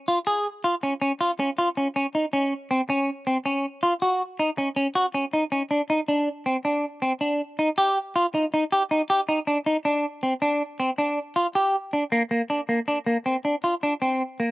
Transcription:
0.08 F4
0.27 G#4
0.64 F4
0.83 C#4
1.02 C#4
1.21 F4
1.40 C#4
1.58 F4
1.77 C#4
1.96 C#4
2.15 D#4
2.33 C#4
2.71 C4
2.90 C#4
3.27 C4
3.46 C#4
3.83 F4
4.02 F#4
4.39 D#4
4.58 C#4
4.76 C#4
4.95 F#4
5.14 C#4
5.33 D#4
5.52 C#4
5.71 D4
5.90 D#4
6.08 D4
6.46 C4
6.65 D4
7.02 C4
7.21 D4
7.59 D#4
7.78 G4
8.16 F4
8.35 D#4
8.54 D#4
8.72 G4
8.91 D#4
9.10 G4
9.29 D#4
9.47 D4
9.66 D#4
9.85 D4
10.23 C4
10.42 D4
10.80 C4
10.98 D4
11.36 F4
11.55 G4
11.93 D4
12.12 A#3
12.31 A#3
12.50 D4
12.69 A#3
12.88 D4
13.06 A#3
13.26 C4
13.45 D4
13.64 F4
13.83 D4
14.02 C4
14.40 A#3

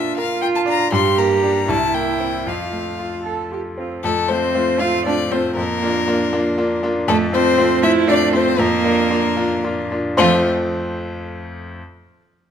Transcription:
Already playing: A#2 A#3 D4 F4 E5
0.18 F4 A#4 F5
0.42 F4 G5
0.55 A5
0.66 D4 A#5
0.92 G2 G4 C6
1.18 A#3 A#5
1.43 D4 G4
1.68 C2 E4 A5
1.94 A#3 G5
2.20 C4 E4
2.46 F2 F4 F5
2.72 A3
2.99 F4
3.24 A4
3.52 F4 G4
3.78 C4 F4
4.03 F2 A3 A4
4.29 A3 C4 F4 C5
4.55 A3 C4 F4
4.80 A3 C4 F4 F5
5.05 A3 C4 D4 F4 D5
5.31 A3 C4 F4 C5
5.56 F2 A#3 A#4
5.82 A#3 D4 F4
6.07 A#3 D4 F4
6.33 A#3 D4 F4
6.58 A#3 D4 F4
6.83 A#3 D4 F4
7.08 F2 A3 A4
7.33 A3 C4 F4 C5
7.57 A3 C4 F4
7.83 A3 C4 E4 F4 E5
8.08 A3 C4 D4 F4 D5
8.33 A3 C4 F4 C5
8.59 F2 A#3 A#4
8.84 A#3 D4 F4
9.11 A#3 D4 F4
9.36 A#3 D4 F4
9.63 A#3 D4 F4
9.92 A#3 D4 F4
10.17 F2 F3 A3 C4 F4 C5

